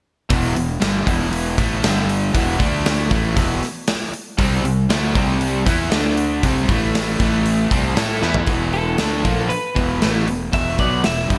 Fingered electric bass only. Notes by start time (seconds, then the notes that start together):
0.31 E1
0.57 E1
0.82 G1
1.07 E1
1.58 A1
1.85 G1
2.35 E1
2.60 D2
3.11 A1
3.37 E1
4.39 C2
4.64 C2
4.90 D2
5.16 C2
5.67 E2
5.93 D2
6.44 C2
6.69 A1
7.20 A1
7.71 C2
7.97 A2
8.23 E2
8.47 E1
8.99 D2
9.25 A#1
9.51 muted fingered electric bass stroke
9.77 E1
10.03 A1
10.28 E1
10.54 E1
10.79 B1
11.04 E1
11.30 G1